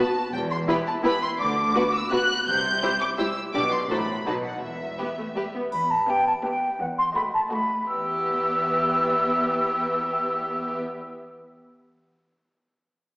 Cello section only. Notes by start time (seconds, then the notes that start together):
0.32 E2
1.39 D3
2.47 C3
3.54 B2
3.90 A2
4.26 B2
4.63 E2
5.72 E2
6.79 E2
7.87 E2